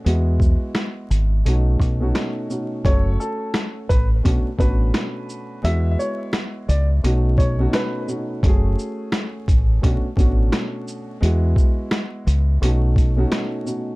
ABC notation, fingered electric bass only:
X:1
M:4/4
L:1/16
Q:"Swing 16ths" 1/4=86
K:Bdor
V:1 name="Fingered electric bass" clef=bass
E,,3 z3 G,,,2 B,,,2 B,,,2 z4 | F,,,2 z4 A,,,2 B,,, z A,,,2 z4 | E,,2 z4 C,,2 B,,,4 z4 | F,,,2 z4 A,,,2 B,,, z A,,,2 z4 |
E,,2 z4 C,,2 B,,,4 z4 |]